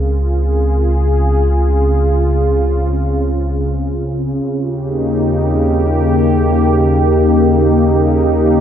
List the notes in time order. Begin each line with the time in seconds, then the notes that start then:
Already playing: C#2 C#3 C4 F4 G#4 A#4
4.44 D#2
4.61 G4
4.86 A#3 D#4